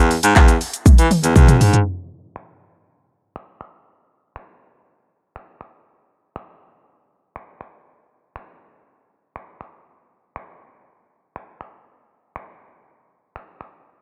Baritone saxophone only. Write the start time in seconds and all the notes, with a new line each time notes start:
Already playing: E2
0.24 G#2
0.36 E2
0.86 E3
0.98 E3
1.24 E2
1.36 E2
1.61 G#2